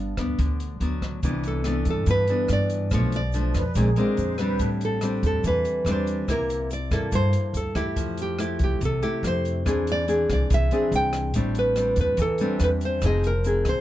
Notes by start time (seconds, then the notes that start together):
Already playing: G1 G2 B3 D4 G4
0.17 D2 B3 D4, kick, cross-stick, closed hi-hat
0.39 D2 D3, kick, closed hi-hat
0.60 closed hi-hat
0.80 D2 F#3 B3 D4, closed hi-hat
1.02 kick, cross-stick, closed hi-hat
1.23 C2 C3 E3 B3 D4, kick, closed hi-hat, shaker
1.44 A4, closed hi-hat, shaker
1.64 E3 B3 D4, cross-stick, closed hi-hat, shaker
1.85 G2, kick, closed hi-hat, shaker
1.90 A4
2.06 G2, kick, closed hi-hat, shaker
2.10 B4
2.27 E3 B3 D4, closed hi-hat, shaker
2.48 G2, cross-stick, closed hi-hat, shaker
2.53 D5
2.70 closed hi-hat, shaker
2.91 B1 B2 F3 A3 D4 C#5, kick, cross-stick, closed hi-hat, shaker
3.12 D5, closed hi-hat, shaker
3.33 F3 A3 D4, closed hi-hat, shaker
3.54 F2 B4, kick, cross-stick, closed hi-hat, shaker
3.75 A#1 A#2 G#3 C4 D4 G#4, kick, closed hi-hat, shaker
3.96 G#3 C4 D4 A#4, closed hi-hat, shaker
4.17 F2 C5, closed hi-hat, shaker
4.38 G3 C4 D4 B4, cross-stick, closed hi-hat, shaker
4.60 A1 A2, kick, closed hi-hat, shaker
4.81 A4, closed hi-hat, shaker
5.01 G3 C4 D4, cross-stick, closed hi-hat, shaker
5.23 E2 A4, kick, closed hi-hat, shaker
5.44 E2 E3 B4, kick, closed hi-hat, shaker
5.65 closed hi-hat, shaker
5.85 E2 G3 C4 D4, cross-stick, closed hi-hat, shaker
5.91 C5
6.07 closed hi-hat, shaker
6.28 C2 C3 A#3 E4 A#4, kick, cross-stick, closed hi-hat, shaker
6.50 closed hi-hat, shaker
6.71 D5, closed hi-hat, shaker
6.91 G2 A#3 E4 A4, kick, cross-stick, closed hi-hat, shaker
7.12 G2 C5, kick, closed hi-hat, shaker
7.33 closed hi-hat, shaker
7.53 D2 A4, closed hi-hat, shaker
7.75 E2 A3 E4 G4, kick, cross-stick, closed hi-hat, shaker
7.96 F2 F3, kick, closed hi-hat, shaker
8.17 closed hi-hat, shaker
8.22 G4
8.39 A3 E4 G4, cross-stick, closed hi-hat, shaker
8.59 C2, kick, closed hi-hat, shaker
8.64 G4
8.81 C2 C3, kick, closed hi-hat, shaker
8.85 A4
9.02 A3 E4 G4, closed hi-hat, shaker
9.23 F2, cross-stick, closed hi-hat, shaker
9.27 C5
9.45 closed hi-hat, shaker
9.65 E2 E3 C4 D4 G#4, kick, cross-stick, closed hi-hat, shaker
9.87 closed hi-hat, shaker
9.92 D5
10.08 C4 D4 G#4, closed hi-hat, shaker
10.29 C2 D5, kick, cross-stick, closed hi-hat, shaker
10.50 C2 E3, kick, closed hi-hat, shaker
10.54 E5
10.71 C4 D4 G#4, closed hi-hat, shaker
10.91 C2, closed hi-hat, shaker
10.96 G5
11.13 cross-stick, closed hi-hat, shaker
11.34 A1 A2 G3 C4 D4, kick, closed hi-hat, shaker
11.55 B4, closed hi-hat, shaker
11.76 G3 C4 D4, cross-stick, closed hi-hat, shaker
11.96 E2, kick, closed hi-hat, shaker
12.01 B4
12.17 E2 E3, kick, closed hi-hat, shaker
12.22 A4
12.38 G3 C4 D4, closed hi-hat, shaker
12.60 E2, cross-stick, closed hi-hat, shaker
12.64 B4
12.81 closed hi-hat, shaker
12.85 C5
13.01 F1 F3 C4 D#4 G#4, kick, cross-stick, closed hi-hat, shaker
13.06 D#5
13.23 A#4, closed hi-hat, shaker
13.44 C4 D#4 G#4, closed hi-hat, shaker
13.65 C2, kick, cross-stick, closed hi-hat, shaker
13.69 C5